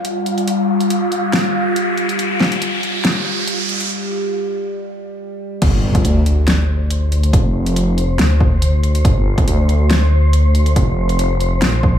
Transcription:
Already playing: G3 F4, riser
0.05 closed hi-hat
0.26 closed hi-hat
0.38 closed hi-hat
0.48 closed hi-hat
0.80 closed hi-hat
0.90 closed hi-hat
1.12 closed hi-hat
1.33 snare, closed hi-hat
1.76 closed hi-hat
1.97 closed hi-hat
2.09 closed hi-hat
2.19 closed hi-hat
2.40 snare
2.52 closed hi-hat
2.62 closed hi-hat
2.83 closed hi-hat
3.05 snare, closed hi-hat
3.47 closed hi-hat
3.69 closed hi-hat
3.81 closed hi-hat
5.62 G1 C5, kick, closed hi-hat, crash, impact
5.95 kick, closed hi-hat
6.05 D2, closed hi-hat
6.26 closed hi-hat
6.48 snare, closed hi-hat
6.91 closed hi-hat
7.12 closed hi-hat
7.23 closed hi-hat
7.33 F1, kick, closed hi-hat
7.66 closed hi-hat
7.76 closed hi-hat
7.98 closed hi-hat
8.19 D2, snare, closed hi-hat
8.40 kick
8.62 closed hi-hat
8.83 closed hi-hat
8.95 closed hi-hat
9.05 G1, kick, closed hi-hat
9.38 kick, closed hi-hat
9.47 D2, closed hi-hat
9.69 closed hi-hat
9.90 snare, closed hi-hat
10.33 closed hi-hat
10.55 closed hi-hat
10.66 closed hi-hat
10.76 F1, kick, closed hi-hat
11.09 closed hi-hat
11.19 closed hi-hat
11.40 closed hi-hat
11.62 A#1, snare, closed hi-hat
11.83 kick

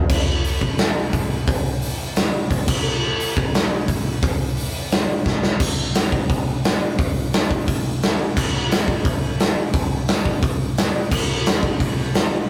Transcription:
0.10 kick, crash
0.44 open hi-hat
0.61 kick
0.78 snare, open hi-hat
1.13 kick, open hi-hat
1.47 kick, open hi-hat
1.81 open hi-hat
2.16 snare, open hi-hat
2.50 kick, open hi-hat
2.68 kick, crash
3.20 open hi-hat
3.37 kick
3.54 snare, open hi-hat
3.88 kick, open hi-hat
4.22 kick, open hi-hat
4.57 open hi-hat
4.92 snare, open hi-hat
5.26 kick, snare
5.43 snare
5.60 kick, crash
5.95 snare, open hi-hat
6.12 kick
6.30 kick, open hi-hat
6.64 snare, open hi-hat
6.98 kick, open hi-hat
7.33 snare, open hi-hat
7.51 kick
7.68 kick, open hi-hat
8.03 snare, open hi-hat
8.37 kick, crash
8.71 snare, open hi-hat
8.88 kick
9.05 kick, open hi-hat
9.40 snare, open hi-hat
9.74 kick, open hi-hat
10.08 snare, open hi-hat
10.25 kick
10.43 kick, open hi-hat
10.77 snare, open hi-hat
11.12 kick, crash
11.46 snare, open hi-hat
11.63 kick
11.80 kick, open hi-hat
12.14 snare, open hi-hat

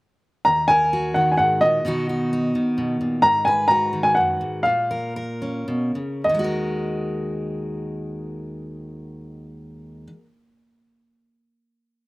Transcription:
0.45 D#2 A#5
0.68 A#4 G#5
0.93 F#4
1.14 D#3 F#5
1.32 G#5
1.37 G#2 F#5
1.61 A#2 D#5
1.85 B2 D#3 B3 D#4 F#4
2.09 F#4
2.33 D#4
2.55 D#3
2.78 B2
3.01 A#2
3.22 G#2 A#5
3.45 B4 G#5
3.68 F#4 A#5
3.93 D#3
4.03 G#5
4.15 F#2 F#5
4.41 G#2
4.63 A#2 F5
4.91 A#4
5.16 A#4
5.42 C#4
5.68 B2
5.95 C#3
6.24 D#2 D#5
6.29 D#3
6.35 G#3
6.39 F#4
6.44 A#4

